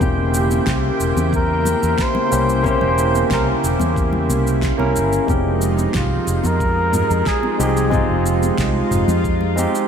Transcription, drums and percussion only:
0.01 kick loud
0.01 high conga medium
0.01 cabasa soft
0.34 cabasa medium
0.50 high conga medium
0.50 cabasa soft
0.67 kick medium
0.67 snare medium
0.67 cabasa soft
1.00 cabasa medium
1.17 high conga medium
1.17 cabasa soft
1.33 kick medium
1.33 cabasa soft
1.65 high conga medium
1.65 low conga medium
1.65 cabasa medium
1.83 cabasa soft
1.98 kick loud
1.98 snare medium
1.98 cabasa soft
2.15 high conga medium
2.15 low conga medium
2.32 cabasa medium
2.49 cabasa soft
2.64 kick loud
2.64 high conga medium
2.64 cabasa soft
2.81 low conga medium
2.98 cabasa medium
3.14 high conga medium
3.14 cabasa soft
3.31 kick medium
3.31 snare medium
3.31 cabasa soft
3.64 cabasa medium
3.80 high conga medium
3.80 low conga medium
3.80 cabasa soft
3.96 kick loud
3.96 cabasa soft
4.13 low conga medium
4.29 high conga medium
4.29 cabasa medium
4.47 cabasa soft
4.62 kick loud
4.62 snare medium
4.62 cabasa soft
4.79 high conga medium
4.96 cabasa medium
5.13 cabasa soft
5.28 kick loud
5.28 high conga medium
5.28 cabasa soft
5.62 cabasa medium
5.77 high conga medium
5.77 cabasa soft
5.94 kick medium
5.94 snare medium
5.94 mid tom medium
5.94 cabasa soft
6.28 cabasa medium
6.44 high conga medium
6.44 cabasa soft
6.60 kick medium
6.60 cabasa soft
6.93 mid tom medium
6.93 high conga medium
6.93 low conga medium
6.93 cabasa medium
7.11 cabasa soft
7.26 kick medium
7.26 snare medium
7.26 cabasa soft
7.43 high conga medium
7.43 low conga medium
7.60 cabasa medium
7.77 cabasa soft
7.91 kick medium
7.91 mid tom medium
7.91 high conga medium
7.91 cabasa soft
8.26 cabasa medium
8.42 high conga medium
8.42 cabasa soft
8.58 kick medium
8.58 snare medium
8.58 cabasa soft
8.91 mid tom medium
8.91 cabasa medium
9.08 high conga medium
9.08 low conga medium
9.08 cabasa soft
9.24 kick medium
9.24 cabasa soft
9.41 low conga medium
9.57 high conga medium
9.57 cabasa medium
9.75 cabasa soft

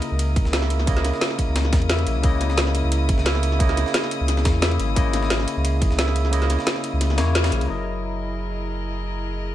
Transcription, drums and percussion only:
0.02 closed hi-hat medium
0.02 ride medium
0.19 closed hi-hat medium
0.19 ride medium
0.36 kick loud
0.36 closed hi-hat medium
0.36 ride medium
0.45 snare soft
0.53 snare loud
0.53 closed hi-hat medium
0.53 ride medium
0.62 snare soft
0.70 closed hi-hat medium
0.70 ride medium
0.79 snare soft
0.87 kick loud
0.87 closed hi-hat medium
0.87 ride medium
0.97 snare soft
0.97 ride soft
1.04 snare soft
1.04 closed hi-hat medium
1.04 ride medium
1.14 snare soft
1.21 snare loud
1.21 closed hi-hat medium
1.21 ride medium
1.31 snare soft
1.38 kick medium
1.38 closed hi-hat medium
1.38 ride medium
1.56 snare loud
1.56 snare soft
1.56 closed hi-hat medium
1.56 ride medium
1.65 snare soft
1.73 kick loud
1.73 snare loud
1.73 closed hi-hat medium
1.73 ride medium
1.82 ride soft
1.90 snare loud
1.90 closed hi-hat medium
1.90 ride medium
1.99 ride soft
2.07 closed hi-hat medium
2.07 ride medium
2.23 kick loud
2.23 closed hi-hat medium
2.23 ride medium
2.41 snare soft
2.41 closed hi-hat medium
2.41 ride medium
2.50 snare soft
2.58 snare loud
2.58 closed hi-hat medium
2.58 ride medium
2.67 snare soft
2.75 closed hi-hat medium
2.75 ride medium
2.92 closed hi-hat medium
2.92 ride medium
3.09 kick medium
3.09 closed hi-hat medium
3.09 ride medium
3.18 snare soft
3.26 snare loud
3.26 closed hi-hat medium
3.26 ride medium
3.35 snare soft
3.43 closed hi-hat medium
3.43 ride medium
3.52 snare soft
3.60 kick loud
3.60 closed hi-hat medium
3.60 ride medium
3.69 snare soft
3.69 ride soft
3.77 snare soft
3.77 closed hi-hat medium
3.77 ride medium
3.86 snare soft
3.94 snare loud
3.94 closed hi-hat medium
3.94 ride medium
4.04 snare soft
4.11 closed hi-hat medium
4.11 ride medium
4.28 snare soft
4.28 closed hi-hat medium
4.28 ride medium
4.37 snare soft
4.45 kick loud
4.45 snare loud
4.45 closed hi-hat medium
4.45 ride medium
4.62 snare loud
4.62 closed hi-hat medium
4.62 ride medium
4.71 ride soft
4.79 closed hi-hat medium
4.79 ride medium
4.96 kick loud
4.96 closed hi-hat medium
4.96 ride medium
5.13 snare soft
5.13 closed hi-hat medium
5.13 ride medium
5.22 snare soft
5.30 snare loud
5.30 closed hi-hat medium
5.30 ride medium
5.40 snare soft
5.48 closed hi-hat medium
5.48 ride medium
5.65 closed hi-hat medium
5.65 ride medium
5.82 kick medium
5.82 closed hi-hat medium
5.82 ride medium
5.91 snare soft
5.99 snare loud
5.99 closed hi-hat medium
5.99 ride medium
6.08 snare soft
6.16 closed hi-hat medium
6.16 ride medium
6.25 snare soft
6.33 closed hi-hat loud
6.33 ride medium
6.42 snare soft
6.42 ride soft
6.50 snare soft
6.50 closed hi-hat medium
6.50 ride medium
6.59 snare soft
6.67 snare loud
6.67 closed hi-hat medium
6.67 ride medium
6.76 snare soft
6.84 closed hi-hat medium
6.84 ride medium
7.01 snare soft
7.01 closed hi-hat loud
7.01 ride medium
7.10 snare soft
7.18 snare loud
7.18 closed hi-hat medium
7.18 ride medium
7.35 snare loud
7.35 closed hi-hat loud
7.35 ride medium
7.44 snare loud
7.44 ride medium
7.52 closed hi-hat medium
7.61 ride medium

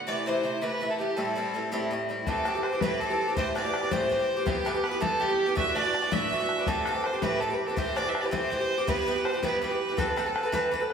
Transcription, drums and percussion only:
2.27 bodhran medium
2.45 bodhran medium
2.63 bodhran medium
2.81 bodhran medium
3.01 bodhran soft
3.37 bodhran medium
3.56 bodhran medium
3.74 bodhran medium
3.91 bodhran medium
4.11 bodhran soft
4.47 bodhran loud
4.66 bodhran medium
4.84 bodhran medium
5.02 bodhran medium
5.21 bodhran soft
5.57 bodhran medium
5.76 bodhran medium
5.94 bodhran medium
6.12 bodhran medium
6.31 bodhran soft
6.49 bodhran soft
6.67 bodhran medium
6.86 bodhran medium
7.04 bodhran medium
7.22 bodhran medium
7.41 bodhran soft
7.77 bodhran medium
7.97 bodhran medium
8.15 bodhran medium
8.33 bodhran medium
8.52 bodhran soft
8.88 bodhran medium
9.25 bodhran medium
9.43 bodhran medium
9.62 bodhran soft
9.98 bodhran medium
10.17 bodhran medium
10.36 bodhran medium
10.53 bodhran medium
10.73 bodhran soft
10.90 bodhran soft

